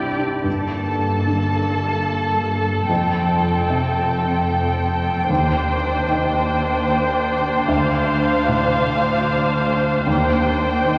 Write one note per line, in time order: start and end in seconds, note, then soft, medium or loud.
0.00 0.42 C2 soft
0.00 0.44 G2 soft
0.00 0.21 C3 medium
0.00 0.17 D4 soft
0.00 0.21 D4 medium
0.00 0.21 E4 medium
0.00 0.49 E4 soft
0.00 0.21 G4 soft
0.00 0.48 G4 soft
0.00 0.21 D5 medium
0.00 0.48 D5 soft
0.17 0.46 D4 soft
0.44 2.85 G1 soft
0.44 2.84 G2 soft
0.44 2.85 G2 soft
0.44 2.85 A#3 soft
0.44 5.25 A4 soft
0.44 2.85 A5 soft
1.27 2.89 D3 soft
2.89 5.25 F1 soft
2.89 5.25 F2 soft
2.89 5.25 C4 soft
2.89 7.64 G5 soft
3.70 5.29 C3 soft
5.29 7.64 D#2 medium
5.29 7.64 D#2 soft
5.29 7.65 D#2 medium
5.29 10.03 D4 medium
5.29 10.03 C5 soft
6.08 7.68 D#3 soft
7.68 10.03 D2 medium
7.68 10.08 F5 medium
8.48 10.07 A2 soft
10.06 10.98 D#2 medium
10.06 10.98 D4 medium
10.06 10.98 C5 medium
10.06 10.98 G5 medium
10.85 10.98 D#3 soft